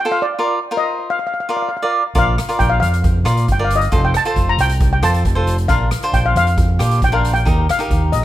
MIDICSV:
0, 0, Header, 1, 5, 480
1, 0, Start_track
1, 0, Tempo, 442152
1, 418, Time_signature, 4, 2, 24, 8
1, 8952, End_track
2, 0, Start_track
2, 0, Title_t, "Steel pan"
2, 0, Program_c, 0, 114
2, 126, Note_on_c, 0, 77, 93
2, 164, Note_off_c, 0, 77, 0
2, 239, Note_on_c, 0, 74, 91
2, 826, Note_off_c, 0, 74, 0
2, 839, Note_on_c, 0, 75, 96
2, 1178, Note_off_c, 0, 75, 0
2, 1196, Note_on_c, 0, 77, 89
2, 1245, Note_off_c, 0, 77, 0
2, 1294, Note_on_c, 0, 77, 62
2, 1335, Note_off_c, 0, 77, 0
2, 1376, Note_on_c, 0, 77, 65
2, 1416, Note_off_c, 0, 77, 0
2, 1452, Note_on_c, 0, 77, 58
2, 1495, Note_off_c, 0, 77, 0
2, 1523, Note_on_c, 0, 77, 63
2, 1570, Note_off_c, 0, 77, 0
2, 1620, Note_on_c, 0, 77, 54
2, 1660, Note_off_c, 0, 77, 0
2, 1700, Note_on_c, 0, 77, 60
2, 1741, Note_off_c, 0, 77, 0
2, 1763, Note_on_c, 0, 77, 52
2, 1812, Note_off_c, 0, 77, 0
2, 1832, Note_on_c, 0, 77, 67
2, 1886, Note_off_c, 0, 77, 0
2, 1918, Note_on_c, 0, 77, 55
2, 1970, Note_off_c, 0, 77, 0
2, 2002, Note_on_c, 0, 77, 69
2, 2053, Note_off_c, 0, 77, 0
2, 2371, Note_on_c, 0, 77, 102
2, 2813, Note_on_c, 0, 79, 105
2, 2849, Note_off_c, 0, 77, 0
2, 2926, Note_on_c, 0, 77, 93
2, 2940, Note_off_c, 0, 79, 0
2, 2983, Note_off_c, 0, 77, 0
2, 3039, Note_on_c, 0, 77, 99
2, 3494, Note_off_c, 0, 77, 0
2, 3822, Note_on_c, 0, 79, 95
2, 3924, Note_off_c, 0, 79, 0
2, 3956, Note_on_c, 0, 77, 80
2, 4050, Note_off_c, 0, 77, 0
2, 4079, Note_on_c, 0, 75, 97
2, 4386, Note_off_c, 0, 75, 0
2, 4394, Note_on_c, 0, 79, 98
2, 4444, Note_off_c, 0, 79, 0
2, 4523, Note_on_c, 0, 81, 107
2, 4846, Note_off_c, 0, 81, 0
2, 4878, Note_on_c, 0, 82, 103
2, 4980, Note_off_c, 0, 82, 0
2, 5000, Note_on_c, 0, 79, 109
2, 5325, Note_off_c, 0, 79, 0
2, 5349, Note_on_c, 0, 79, 94
2, 5400, Note_off_c, 0, 79, 0
2, 5473, Note_on_c, 0, 81, 94
2, 5912, Note_off_c, 0, 81, 0
2, 6170, Note_on_c, 0, 77, 99
2, 6619, Note_off_c, 0, 77, 0
2, 6664, Note_on_c, 0, 79, 109
2, 6784, Note_off_c, 0, 79, 0
2, 6792, Note_on_c, 0, 77, 92
2, 6904, Note_off_c, 0, 77, 0
2, 6917, Note_on_c, 0, 77, 100
2, 7354, Note_off_c, 0, 77, 0
2, 7645, Note_on_c, 0, 79, 109
2, 7749, Note_on_c, 0, 77, 98
2, 7754, Note_off_c, 0, 79, 0
2, 7948, Note_off_c, 0, 77, 0
2, 7965, Note_on_c, 0, 79, 109
2, 8362, Note_off_c, 0, 79, 0
2, 8364, Note_on_c, 0, 77, 102
2, 8819, Note_on_c, 0, 75, 87
2, 8844, Note_off_c, 0, 77, 0
2, 8952, Note_off_c, 0, 75, 0
2, 8952, End_track
3, 0, Start_track
3, 0, Title_t, "Cavaquinho"
3, 0, Program_c, 1, 24
3, 54, Note_on_c, 1, 65, 81
3, 58, Note_on_c, 1, 69, 77
3, 63, Note_on_c, 1, 72, 79
3, 272, Note_off_c, 1, 65, 0
3, 275, Note_off_c, 1, 69, 0
3, 275, Note_off_c, 1, 72, 0
3, 419, Note_on_c, 1, 65, 75
3, 423, Note_on_c, 1, 70, 69
3, 429, Note_on_c, 1, 74, 76
3, 636, Note_off_c, 1, 65, 0
3, 636, Note_off_c, 1, 70, 0
3, 637, Note_off_c, 1, 74, 0
3, 771, Note_on_c, 1, 65, 70
3, 777, Note_on_c, 1, 70, 67
3, 781, Note_on_c, 1, 72, 68
3, 1279, Note_off_c, 1, 65, 0
3, 1282, Note_off_c, 1, 72, 0
3, 1283, Note_off_c, 1, 70, 0
3, 1615, Note_on_c, 1, 65, 74
3, 1621, Note_on_c, 1, 70, 54
3, 1629, Note_on_c, 1, 74, 86
3, 1834, Note_off_c, 1, 65, 0
3, 1834, Note_off_c, 1, 70, 0
3, 1840, Note_off_c, 1, 74, 0
3, 1981, Note_on_c, 1, 74, 84
3, 1983, Note_on_c, 1, 70, 66
3, 1986, Note_on_c, 1, 65, 65
3, 2195, Note_off_c, 1, 65, 0
3, 2196, Note_off_c, 1, 70, 0
3, 2197, Note_off_c, 1, 74, 0
3, 2333, Note_on_c, 1, 65, 80
3, 2335, Note_on_c, 1, 74, 73
3, 2337, Note_on_c, 1, 70, 67
3, 2552, Note_off_c, 1, 74, 0
3, 2553, Note_off_c, 1, 65, 0
3, 2554, Note_off_c, 1, 70, 0
3, 2699, Note_on_c, 1, 65, 74
3, 2706, Note_on_c, 1, 70, 65
3, 2707, Note_on_c, 1, 74, 67
3, 3203, Note_off_c, 1, 65, 0
3, 3205, Note_off_c, 1, 74, 0
3, 3206, Note_off_c, 1, 70, 0
3, 3528, Note_on_c, 1, 65, 80
3, 3531, Note_on_c, 1, 70, 56
3, 3534, Note_on_c, 1, 74, 85
3, 3749, Note_off_c, 1, 70, 0
3, 3750, Note_off_c, 1, 65, 0
3, 3752, Note_off_c, 1, 74, 0
3, 3902, Note_on_c, 1, 74, 89
3, 3903, Note_on_c, 1, 70, 72
3, 3908, Note_on_c, 1, 65, 68
3, 4116, Note_off_c, 1, 65, 0
3, 4116, Note_off_c, 1, 70, 0
3, 4118, Note_off_c, 1, 74, 0
3, 4253, Note_on_c, 1, 65, 75
3, 4258, Note_on_c, 1, 69, 61
3, 4264, Note_on_c, 1, 72, 87
3, 4472, Note_off_c, 1, 65, 0
3, 4472, Note_off_c, 1, 69, 0
3, 4477, Note_off_c, 1, 72, 0
3, 4617, Note_on_c, 1, 65, 74
3, 4623, Note_on_c, 1, 69, 67
3, 4630, Note_on_c, 1, 72, 80
3, 5121, Note_off_c, 1, 65, 0
3, 5125, Note_off_c, 1, 69, 0
3, 5126, Note_off_c, 1, 72, 0
3, 5455, Note_on_c, 1, 65, 77
3, 5457, Note_on_c, 1, 69, 73
3, 5465, Note_on_c, 1, 72, 81
3, 5672, Note_off_c, 1, 65, 0
3, 5675, Note_off_c, 1, 69, 0
3, 5675, Note_off_c, 1, 72, 0
3, 5812, Note_on_c, 1, 72, 87
3, 5817, Note_on_c, 1, 69, 73
3, 5823, Note_on_c, 1, 65, 68
3, 6032, Note_off_c, 1, 65, 0
3, 6032, Note_off_c, 1, 69, 0
3, 6032, Note_off_c, 1, 72, 0
3, 6175, Note_on_c, 1, 62, 80
3, 6184, Note_on_c, 1, 65, 78
3, 6188, Note_on_c, 1, 70, 70
3, 6392, Note_off_c, 1, 62, 0
3, 6396, Note_off_c, 1, 70, 0
3, 6397, Note_off_c, 1, 65, 0
3, 6547, Note_on_c, 1, 62, 69
3, 6553, Note_on_c, 1, 72, 83
3, 6555, Note_on_c, 1, 65, 61
3, 7046, Note_off_c, 1, 62, 0
3, 7048, Note_off_c, 1, 65, 0
3, 7049, Note_off_c, 1, 72, 0
3, 7373, Note_on_c, 1, 67, 89
3, 7377, Note_on_c, 1, 65, 62
3, 7384, Note_on_c, 1, 62, 66
3, 7591, Note_off_c, 1, 62, 0
3, 7591, Note_off_c, 1, 65, 0
3, 7592, Note_off_c, 1, 67, 0
3, 7730, Note_on_c, 1, 62, 82
3, 7733, Note_on_c, 1, 65, 69
3, 7738, Note_on_c, 1, 70, 79
3, 7949, Note_off_c, 1, 62, 0
3, 7952, Note_off_c, 1, 65, 0
3, 7952, Note_off_c, 1, 70, 0
3, 8092, Note_on_c, 1, 63, 75
3, 8095, Note_on_c, 1, 67, 68
3, 8104, Note_on_c, 1, 70, 74
3, 8311, Note_off_c, 1, 63, 0
3, 8311, Note_off_c, 1, 67, 0
3, 8313, Note_off_c, 1, 70, 0
3, 8453, Note_on_c, 1, 63, 73
3, 8464, Note_on_c, 1, 67, 64
3, 8469, Note_on_c, 1, 70, 67
3, 8952, Note_off_c, 1, 63, 0
3, 8952, Note_off_c, 1, 67, 0
3, 8952, Note_off_c, 1, 70, 0
3, 8952, End_track
4, 0, Start_track
4, 0, Title_t, "Fingered electric bass"
4, 0, Program_c, 2, 33
4, 2339, Note_on_c, 2, 34, 113
4, 2563, Note_off_c, 2, 34, 0
4, 2825, Note_on_c, 2, 34, 100
4, 3047, Note_off_c, 2, 34, 0
4, 3061, Note_on_c, 2, 41, 94
4, 3509, Note_off_c, 2, 41, 0
4, 3533, Note_on_c, 2, 46, 95
4, 3760, Note_off_c, 2, 46, 0
4, 3785, Note_on_c, 2, 31, 106
4, 4231, Note_off_c, 2, 31, 0
4, 4256, Note_on_c, 2, 29, 114
4, 4481, Note_off_c, 2, 29, 0
4, 4735, Note_on_c, 2, 29, 99
4, 4961, Note_off_c, 2, 29, 0
4, 4976, Note_on_c, 2, 36, 92
4, 5426, Note_off_c, 2, 36, 0
4, 5457, Note_on_c, 2, 41, 93
4, 5682, Note_off_c, 2, 41, 0
4, 5700, Note_on_c, 2, 29, 108
4, 6148, Note_off_c, 2, 29, 0
4, 6176, Note_on_c, 2, 34, 107
4, 6401, Note_off_c, 2, 34, 0
4, 6663, Note_on_c, 2, 34, 99
4, 6884, Note_off_c, 2, 34, 0
4, 6899, Note_on_c, 2, 41, 93
4, 7347, Note_off_c, 2, 41, 0
4, 7386, Note_on_c, 2, 46, 91
4, 7606, Note_off_c, 2, 46, 0
4, 7623, Note_on_c, 2, 34, 109
4, 8069, Note_off_c, 2, 34, 0
4, 8102, Note_on_c, 2, 39, 111
4, 8324, Note_off_c, 2, 39, 0
4, 8579, Note_on_c, 2, 39, 98
4, 8802, Note_off_c, 2, 39, 0
4, 8823, Note_on_c, 2, 34, 93
4, 8952, Note_off_c, 2, 34, 0
4, 8952, End_track
5, 0, Start_track
5, 0, Title_t, "Drums"
5, 2332, Note_on_c, 9, 42, 63
5, 2339, Note_on_c, 9, 36, 116
5, 2440, Note_off_c, 9, 42, 0
5, 2448, Note_off_c, 9, 36, 0
5, 2587, Note_on_c, 9, 37, 93
5, 2587, Note_on_c, 9, 42, 83
5, 2696, Note_off_c, 9, 37, 0
5, 2696, Note_off_c, 9, 42, 0
5, 2708, Note_on_c, 9, 42, 61
5, 2817, Note_off_c, 9, 42, 0
5, 2822, Note_on_c, 9, 36, 93
5, 2824, Note_on_c, 9, 42, 65
5, 2931, Note_off_c, 9, 36, 0
5, 2932, Note_off_c, 9, 42, 0
5, 3066, Note_on_c, 9, 42, 86
5, 3174, Note_off_c, 9, 42, 0
5, 3188, Note_on_c, 9, 42, 66
5, 3296, Note_off_c, 9, 42, 0
5, 3301, Note_on_c, 9, 42, 66
5, 3302, Note_on_c, 9, 36, 121
5, 3410, Note_off_c, 9, 36, 0
5, 3410, Note_off_c, 9, 42, 0
5, 3537, Note_on_c, 9, 37, 91
5, 3537, Note_on_c, 9, 42, 85
5, 3646, Note_off_c, 9, 37, 0
5, 3646, Note_off_c, 9, 42, 0
5, 3661, Note_on_c, 9, 42, 62
5, 3769, Note_off_c, 9, 42, 0
5, 3781, Note_on_c, 9, 36, 87
5, 3781, Note_on_c, 9, 42, 68
5, 3889, Note_off_c, 9, 42, 0
5, 3890, Note_off_c, 9, 36, 0
5, 4021, Note_on_c, 9, 42, 94
5, 4129, Note_off_c, 9, 42, 0
5, 4140, Note_on_c, 9, 42, 66
5, 4249, Note_off_c, 9, 42, 0
5, 4253, Note_on_c, 9, 42, 69
5, 4258, Note_on_c, 9, 36, 113
5, 4361, Note_off_c, 9, 42, 0
5, 4366, Note_off_c, 9, 36, 0
5, 4497, Note_on_c, 9, 37, 90
5, 4497, Note_on_c, 9, 42, 89
5, 4606, Note_off_c, 9, 37, 0
5, 4606, Note_off_c, 9, 42, 0
5, 4616, Note_on_c, 9, 42, 64
5, 4725, Note_off_c, 9, 42, 0
5, 4733, Note_on_c, 9, 42, 72
5, 4737, Note_on_c, 9, 36, 89
5, 4842, Note_off_c, 9, 42, 0
5, 4845, Note_off_c, 9, 36, 0
5, 4976, Note_on_c, 9, 42, 92
5, 5085, Note_off_c, 9, 42, 0
5, 5096, Note_on_c, 9, 42, 77
5, 5204, Note_off_c, 9, 42, 0
5, 5215, Note_on_c, 9, 42, 73
5, 5217, Note_on_c, 9, 36, 127
5, 5323, Note_off_c, 9, 42, 0
5, 5326, Note_off_c, 9, 36, 0
5, 5459, Note_on_c, 9, 37, 90
5, 5459, Note_on_c, 9, 42, 95
5, 5567, Note_off_c, 9, 37, 0
5, 5567, Note_off_c, 9, 42, 0
5, 5583, Note_on_c, 9, 42, 68
5, 5692, Note_off_c, 9, 42, 0
5, 5699, Note_on_c, 9, 36, 88
5, 5702, Note_on_c, 9, 42, 73
5, 5808, Note_off_c, 9, 36, 0
5, 5810, Note_off_c, 9, 42, 0
5, 5940, Note_on_c, 9, 42, 90
5, 6048, Note_off_c, 9, 42, 0
5, 6059, Note_on_c, 9, 42, 63
5, 6167, Note_off_c, 9, 42, 0
5, 6176, Note_on_c, 9, 42, 66
5, 6177, Note_on_c, 9, 36, 115
5, 6284, Note_off_c, 9, 42, 0
5, 6286, Note_off_c, 9, 36, 0
5, 6418, Note_on_c, 9, 37, 91
5, 6418, Note_on_c, 9, 42, 89
5, 6526, Note_off_c, 9, 37, 0
5, 6526, Note_off_c, 9, 42, 0
5, 6539, Note_on_c, 9, 42, 61
5, 6647, Note_off_c, 9, 42, 0
5, 6660, Note_on_c, 9, 36, 94
5, 6662, Note_on_c, 9, 42, 67
5, 6768, Note_off_c, 9, 36, 0
5, 6770, Note_off_c, 9, 42, 0
5, 6904, Note_on_c, 9, 42, 89
5, 7013, Note_off_c, 9, 42, 0
5, 7021, Note_on_c, 9, 42, 71
5, 7130, Note_off_c, 9, 42, 0
5, 7140, Note_on_c, 9, 36, 126
5, 7140, Note_on_c, 9, 42, 67
5, 7248, Note_off_c, 9, 36, 0
5, 7248, Note_off_c, 9, 42, 0
5, 7385, Note_on_c, 9, 37, 94
5, 7385, Note_on_c, 9, 42, 84
5, 7494, Note_off_c, 9, 37, 0
5, 7494, Note_off_c, 9, 42, 0
5, 7504, Note_on_c, 9, 42, 65
5, 7612, Note_off_c, 9, 42, 0
5, 7621, Note_on_c, 9, 36, 96
5, 7621, Note_on_c, 9, 42, 66
5, 7729, Note_off_c, 9, 36, 0
5, 7730, Note_off_c, 9, 42, 0
5, 7866, Note_on_c, 9, 42, 90
5, 7975, Note_off_c, 9, 42, 0
5, 7986, Note_on_c, 9, 42, 63
5, 8095, Note_off_c, 9, 42, 0
5, 8103, Note_on_c, 9, 36, 125
5, 8105, Note_on_c, 9, 42, 65
5, 8212, Note_off_c, 9, 36, 0
5, 8214, Note_off_c, 9, 42, 0
5, 8353, Note_on_c, 9, 37, 88
5, 8353, Note_on_c, 9, 42, 90
5, 8461, Note_off_c, 9, 37, 0
5, 8461, Note_off_c, 9, 42, 0
5, 8465, Note_on_c, 9, 42, 63
5, 8573, Note_off_c, 9, 42, 0
5, 8582, Note_on_c, 9, 36, 95
5, 8585, Note_on_c, 9, 42, 66
5, 8691, Note_off_c, 9, 36, 0
5, 8693, Note_off_c, 9, 42, 0
5, 8823, Note_on_c, 9, 42, 96
5, 8932, Note_off_c, 9, 42, 0
5, 8952, End_track
0, 0, End_of_file